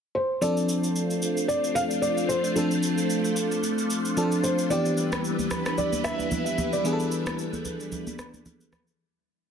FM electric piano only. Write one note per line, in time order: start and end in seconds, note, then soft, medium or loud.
0.41 2.52 F3 medium
0.41 2.52 C4 medium
0.41 2.53 D4 medium
0.41 2.53 A4 medium
2.56 4.13 F3 medium
2.56 4.14 C4 medium
2.56 4.14 D4 medium
2.56 4.15 A4 medium
4.17 4.71 F3 medium
4.17 4.71 C4 medium
4.17 4.70 D4 medium
4.17 4.71 A4 medium
4.70 6.81 E3 medium
4.70 6.81 B3 medium
4.70 6.81 D4 medium
4.70 6.82 G4 medium
6.84 8.95 E3 medium
6.84 8.95 B3 medium
6.84 8.96 D4 medium
6.84 6.93 G#4 medium
6.93 8.99 A4 medium